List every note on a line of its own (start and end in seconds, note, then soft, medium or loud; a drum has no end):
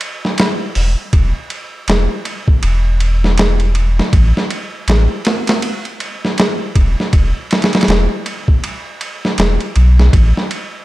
0.01 ride medium
0.25 snare soft
0.38 snare loud
0.38 ride medium
0.75 0.95 E1 medium
0.75 open hi-hat medium
1.13 1.33 E1 loud
1.13 kick loud
1.13 ride medium
1.50 ride medium
1.88 2.08 E1 medium
1.88 snare loud
1.88 ride medium
2.25 ride medium
2.48 kick medium
2.63 4.01 E1 loud
2.63 ride medium
3.00 ride medium
3.24 snare soft
3.38 snare loud
3.38 ride medium
3.60 ride soft
3.75 ride medium
3.99 snare medium
4.13 4.33 A1 medium
4.13 kick loud
4.13 ride medium
4.37 snare soft
4.50 ride medium
4.88 5.07 A1 medium
4.88 snare loud
4.88 ride medium
5.25 snare loud
5.25 ride medium
5.47 snare loud
5.47 ride medium
5.62 ride medium
5.85 ride soft
6.00 ride medium
6.25 snare soft
6.38 snare loud
6.38 ride medium
6.75 6.95 E1 medium
6.75 kick medium
6.75 ride medium
7.00 snare soft
7.13 7.33 E1 medium
7.13 kick loud
7.13 ride medium
7.51 snare medium
7.51 ride medium
7.62 snare medium
7.62 ride medium
7.73 snare medium
7.73 ride medium
7.81 snare medium
7.81 ride medium
7.88 8.08 E1 medium
7.88 snare loud
7.88 ride medium
8.26 ride medium
8.48 kick medium
8.64 ride medium
9.01 ride medium
9.25 snare soft
9.38 9.58 E1 medium
9.38 snare loud
9.38 ride medium
9.61 ride soft
9.76 10.10 B1 loud
9.76 ride medium
10.00 snare soft
10.13 10.33 A1 medium
10.13 kick medium
10.13 ride medium
10.37 snare soft
10.51 ride medium